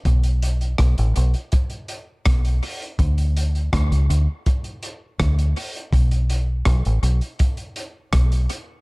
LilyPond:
<<
  \new Staff \with { instrumentName = "Fingered electric bass" } { \clef bass \time 4/4 \key b \minor \tempo 4 = 82 b,,4 b,,16 a,,16 b,,16 r4 r16 b,,8 r8 | d,4 d,16 cis,16 d,16 r4 r16 d,8 r8 | b,,4 b,,16 a,,16 b,,16 r4 r16 b,,8 r8 | }
  \new DrumStaff \with { instrumentName = "Drums" } \drummode { \time 4/4 <hh bd>16 hh16 hh16 hh16 <hh bd ss>16 hh16 hh16 hh16 <hh bd>16 hh16 hh8 <hh bd ss>16 hh16 hho16 hh16 | <hh bd>16 hh16 hh16 hh16 <hh bd ss>16 hh16 hh8 <hh bd>16 hh16 hh8 <hh bd ss>16 hh16 hho16 hh16 | <hh bd>16 hh16 hh8 <hh bd ss>16 hh16 hh16 hh16 <hh bd>16 hh16 hh8 <hh bd ss>16 hh16 hh8 | }
>>